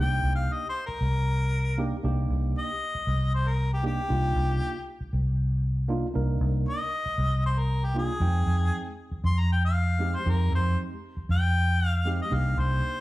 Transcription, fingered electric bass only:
Already playing: C2
0.23 C2
0.88 muted fingered electric bass stroke
1.01 C2
2.04 C2
2.30 C2
2.95 muted fingered electric bass stroke
3.07 C2
4.10 C2
4.36 C2
5.01 muted fingered electric bass stroke
5.13 C2
6.15 C2
6.41 C2
7.06 muted fingered electric bass stroke
7.18 C2
8.20 F2
8.46 F2
9.11 muted fingered electric bass stroke
9.24 F2
10.26 F2
10.52 F2
11.17 muted fingered electric bass stroke
11.29 F2
12.32 C2
12.57 C2

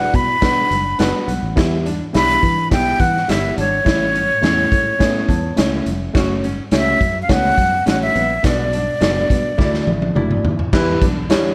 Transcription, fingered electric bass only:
0.14 B2
0.42 B2
0.71 F#1
1.00 F#1
1.28 B1
1.43 A1
1.57 E2
2.15 B1
2.43 E3
2.71 B1
3.00 E3
3.29 G1
3.58 G#1
3.86 A1
4.43 E2
4.72 A2
5.00 A2
5.29 E2
5.58 C#2
5.86 F1
6.15 F#1
6.72 C#2
7.01 F#2
7.29 C#2
7.58 F#2
7.87 A1
8.15 A#1
8.44 B1
9.01 F#1
9.30 B2
9.59 D2
9.87 A1
10.15 F#1
10.44 D#2
10.73 E2
11.02 B1

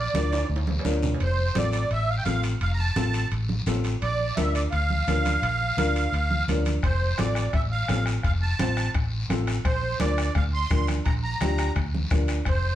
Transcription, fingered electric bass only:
0.14 D2
0.49 D2
0.85 D2
1.20 F1
1.55 A1
1.91 A1
2.26 A1
2.61 F1
2.96 A1
3.32 A1
3.66 A1
4.02 A#1
4.37 D2
4.72 D2
5.07 D2
5.42 A#1
5.77 D2
6.12 D2
6.48 D2
6.83 F1
7.19 A1
7.53 A1
7.89 A1
8.24 F1
8.59 A1
8.94 A1
9.30 A1
9.65 A#1
10.00 D2
10.35 D2
10.71 D2
11.06 A#1
11.41 D2
11.76 D2
12.11 D2
12.46 F1

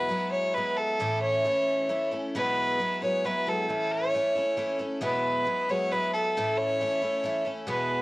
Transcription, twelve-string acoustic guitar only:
Already playing: E2 B2 B3 E4
0.09 F#3 G#3 B3 E4
0.56 F#3 G#3 B3 E4
0.99 A2 E3 A3 C#4 E4
1.44 E3 A3 C#4 E4
1.89 E3 A3 C#4 E4
2.11 A3 C#4 E4
2.35 E2 B2 F#3 G#3 B3 E4
2.79 F#3 G#3 B3 E4
3.02 F#3 G#3 B3 E4
3.24 F#3 G#3 B3 E4
3.47 F#3 G#3 B3 E4
3.68 A2 E3 A3 C#4 E4
4.13 E3 A3 C#4 E4
4.35 A3 C#4 E4
4.57 E3 A3 C#4 E4
4.79 A3 C#4 E4
5.01 E2 B2 F#3 G#3 B3 E4
5.45 F#3 G#3 B3 E4
5.69 F#3 G#3 B3 E4
5.92 F#3 G#3 B3 E4
6.37 A2 E3 A3 C#4 E4
6.81 E3 A3 C#4 E4
7.02 A3 C#4 E4
7.24 E3 A3 C#4 E4
7.45 A3 C#4 E4
7.67 E2 B2 E3 G#3 B3 F#4

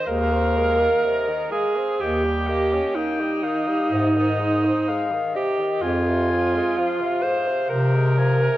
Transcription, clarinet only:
0.06 F5
1.03 D#5
1.52 F5
2.00 G5
2.47 D#5
2.94 G5
3.43 F5
3.92 D#5
4.88 F5
5.35 D#5
5.83 G#5
6.77 F5
7.69 G5
8.18 G#5

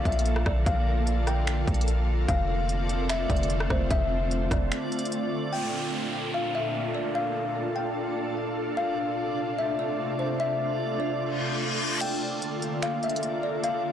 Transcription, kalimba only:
0.06 E5
0.46 D5
0.67 F5
1.27 G5
2.29 F5
3.10 E5
3.30 D5
3.71 C5
3.91 E5
4.51 D5
5.53 G5
6.34 F5
6.55 E5
6.95 D5
7.15 F5
7.76 G5
8.77 F5
9.59 E5
9.79 D5
10.19 C5
10.40 E5
11.00 D5
12.01 G5
12.83 F5
13.04 E5
13.43 D5
13.64 F5

